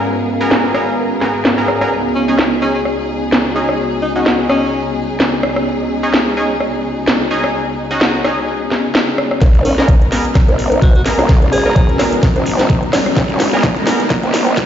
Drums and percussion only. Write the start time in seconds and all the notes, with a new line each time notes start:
0.51 snare
0.74 cross-stick
1.22 snare
1.45 snare
1.68 cross-stick
1.81 cross-stick
2.39 snare
2.85 cross-stick
3.32 snare
3.69 cross-stick
4.26 snare
4.49 cross-stick
5.20 snare
5.43 cross-stick
5.56 cross-stick
6.14 snare
6.60 cross-stick
7.08 snare
7.44 cross-stick
8.01 snare
8.24 cross-stick
8.72 snare
8.95 snare
9.18 cross-stick
9.31 cross-stick
9.42 kick, snare, closed hi-hat
9.55 closed hi-hat
9.65 open hi-hat
9.78 snare
9.88 kick, closed hi-hat
10.02 closed hi-hat
10.12 snare, open hi-hat
10.25 closed hi-hat
10.35 kick, cross-stick, snare, closed hi-hat
10.48 closed hi-hat
10.59 open hi-hat
10.72 closed hi-hat
10.82 kick, closed hi-hat
10.95 closed hi-hat
11.06 snare, open hi-hat
11.19 cross-stick
11.29 kick, snare, closed hi-hat
11.42 closed hi-hat
11.53 open hi-hat
11.76 kick, closed hi-hat
11.89 closed hi-hat
11.99 cross-stick, snare, open hi-hat
12.13 closed hi-hat
12.23 kick, snare, closed hi-hat
12.36 closed hi-hat
12.46 open hi-hat
12.59 snare, closed hi-hat
12.70 kick, closed hi-hat
12.83 closed hi-hat
12.93 cross-stick, snare, open hi-hat
13.06 cross-stick
13.17 kick, snare, closed hi-hat
13.30 closed hi-hat
13.40 snare, open hi-hat
13.63 kick, snare, closed hi-hat
13.77 closed hi-hat
13.87 snare, open hi-hat
14.00 closed hi-hat
14.10 kick, snare, closed hi-hat
14.23 closed hi-hat
14.34 snare, open hi-hat
14.47 closed hi-hat
14.57 kick, snare, closed hi-hat